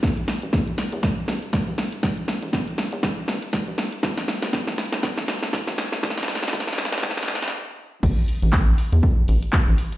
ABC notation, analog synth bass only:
X:1
M:4/4
L:1/16
Q:"Swing 16ths" 1/4=120
K:Em
V:1 name="Analog synth bass" clef=bass
A,,, z2 A,,,2 z2 E,, z2 A,,, z2 A,,, z2 | A,,, z2 A,,,2 z2 E,, z2 A,,, z2 A,,, z2 | E,,, z2 E,,,2 z2 B,,, z2 E,,, z2 E,,, z2 | E,,, z2 E,,,2 z2 B,,, z2 E,,,2 z4 |
A,,, z2 A,,,2 z2 E,, z2 A,,, z2 A,,, z2 |]